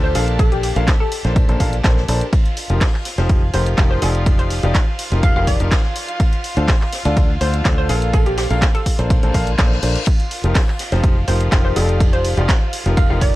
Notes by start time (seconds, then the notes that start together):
Already playing: D2 D3 D4 F4 G4 A4 C5 A5
0.04 C5
0.14 A#1 A#2 D4 A4 A#4 F5, snare, open hi-hat, ride
0.28 closed hi-hat
0.39 A4, kick, closed hi-hat, ride
0.52 G4, closed hi-hat
0.63 G4, open hi-hat, ride
0.76 A#1 A#2 D4 A4 A#4 F5, closed hi-hat, ride
0.88 kick, snare, clap, closed hi-hat, ride
1.00 A4
1.11 open hi-hat, ride
1.25 A#1 A#2 D4 A4 A#4 C5, snare, closed hi-hat
1.36 kick, closed hi-hat, ride
1.49 A#1 A#2 D4 A4 A#4 C5, closed hi-hat
1.60 A#1 A#2 D4 A4 A#4 F5, kick, open hi-hat, ride
1.73 closed hi-hat
1.84 A#1 A#2 D4 A4 A#4 C5, kick, snare, clap, closed hi-hat, ride
1.97 snare
2.08 A#1 D4 A4 A#4 C5, open hi-hat, ride
2.21 closed hi-hat, ride
2.33 F4 F5, kick, closed hi-hat, ride
2.45 closed hi-hat, ride
2.57 open hi-hat, ride
2.70 F1 F3 D#4 F4 G4 A#4, closed hi-hat
2.81 kick, snare, clap, closed hi-hat, open hi-hat
2.94 clap
3.05 snare, open hi-hat, ride
3.18 F1 F3 D#4 F4 G4 C5, snare, closed hi-hat
3.30 kick, closed hi-hat, ride
3.53 F1 F3 D#4 F4 G4 A#4 C5, open hi-hat, ride
3.67 closed hi-hat
3.77 F1 F3 D#4 F4 G4 A#4, kick, snare, clap, closed hi-hat, ride
3.91 C5
4.01 F1 F3 D#4 F4 G4 A4 D5, snare, open hi-hat, ride
4.15 closed hi-hat
4.26 kick, closed hi-hat, ride
4.39 C5, closed hi-hat
4.50 open hi-hat, ride
4.63 F1 F3 D#4 F4 G4 D5, closed hi-hat, ride
4.74 kick, snare, clap, closed hi-hat, ride
4.99 open hi-hat, ride
5.12 F1 F3 D#4 F4 G4 A#4, snare, closed hi-hat
5.23 F5, kick, closed hi-hat, ride
5.36 F1 F3 D#4 F4 G4 A#4 F5
5.47 D5, kick, open hi-hat, ride
5.60 F1 F3 D#4 F4 G4 A#4, closed hi-hat
5.71 kick, snare, clap, closed hi-hat, ride
5.83 snare
5.96 open hi-hat, ride
6.08 closed hi-hat, ride
6.19 kick, closed hi-hat, ride
6.32 closed hi-hat, ride
6.44 open hi-hat, ride
6.57 D2 D3 D4 F4 A4 C5, closed hi-hat
6.68 kick, snare, clap, closed hi-hat, open hi-hat
6.81 clap
6.92 snare, open hi-hat, ride
7.05 D2 D3 D4 F4 A4 D5, snare, closed hi-hat
7.16 kick, closed hi-hat, ride
7.41 D2 D3 D4 F4 A4 C5, open hi-hat, ride
7.54 closed hi-hat
7.65 D2 D3 D4 F4 A4 C5, kick, snare, clap, closed hi-hat, ride
7.78 C5
7.89 A#1 A#2 D4 A4 A#4 F5, snare, open hi-hat, ride
8.02 closed hi-hat
8.13 A4, kick, closed hi-hat, ride
8.26 G4, closed hi-hat
8.38 G4, snare, open hi-hat
8.50 A#1 A#2 D4 A4 A#4 F5, closed hi-hat
8.62 kick, snare, clap, closed hi-hat, ride
8.75 A4, closed hi-hat
8.86 kick, open hi-hat, ride
8.98 A#1 A#2 D4 A4 A#4 C5, snare, closed hi-hat
9.10 kick, closed hi-hat, ride, reverse cymbal
9.23 A#1 A#2 D4 A4 A#4 C5, closed hi-hat
9.34 A#1 A#2 D4 A4 A#4 F5, kick, open hi-hat, ride
9.47 closed hi-hat
9.58 A#1 A#2 D4 A4 A#4 C5, kick, snare, clap, closed hi-hat, ride
9.71 snare
9.83 A#1 D4 A4 A#4 C5, open hi-hat, ride
9.96 closed hi-hat, ride
10.07 F4 F5, kick, closed hi-hat, ride, crash
10.20 closed hi-hat, ride
10.31 open hi-hat, ride
10.44 F1 F3 D#4 F4 G4 A#4, closed hi-hat
10.55 kick, snare, clap, closed hi-hat, open hi-hat
10.68 clap
10.79 snare, open hi-hat, ride
10.92 F1 F3 D#4 F4 G4 C5, snare, closed hi-hat
11.04 kick, closed hi-hat, ride
11.28 F1 F3 D#4 F4 G4 A#4 C5, open hi-hat, ride
11.41 closed hi-hat
11.52 F1 F3 D#4 F4 G4 A#4, kick, snare, clap, closed hi-hat, ride
11.65 C5
11.76 F1 F3 D#4 F4 G4 A4 D5, snare, open hi-hat, ride
11.89 closed hi-hat
12.00 kick, closed hi-hat, ride
12.13 C5, closed hi-hat
12.24 open hi-hat, ride
12.37 F1 F3 D#4 F4 G4 D5, closed hi-hat, ride
12.49 kick, snare, clap, closed hi-hat, ride
12.73 open hi-hat, ride
12.86 F1 F3 D#4 F4 G4 A#4, snare, closed hi-hat
12.97 F5, kick, closed hi-hat, ride
13.10 F1 F3 D#4 F4 G4 A#4 F5
13.21 D5, kick, open hi-hat, ride